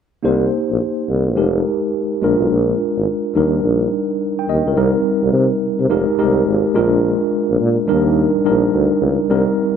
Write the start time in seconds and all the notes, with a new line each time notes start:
0.23 C2 A#3 D#4 G4 C5
0.71 A#1
1.09 C2
1.36 F1 G#3 D#4 G4 A#4
2.22 A#1 G#3 D4 F4 A#4
2.40 B1
2.50 A#1
2.97 G#1
3.35 D#2 G3 D4 D#4 A#4
3.63 A#1
4.39 G5
4.49 D#2 D#5
4.67 C#2 A#4
4.76 C2 G3 C4 D#4 A#4
5.23 C2
5.33 C3
5.62 C3
5.80 C3
5.90 F1 G#3 D#4 G4 A#4
6.08 C2
6.18 C2 G#3 D#4 G4 A#4
6.47 G#1
6.75 A#1 G#3 D4 F4 A#4
7.50 A#1
7.60 A#2
7.87 D#2 G3 D4 D#4 A#4
8.35 A#1
8.45 A#1 G3 D4 D#4 A#4
8.74 D2
9.02 C#2
9.30 C2 G3 C4 D4 A#4
9.37 D#4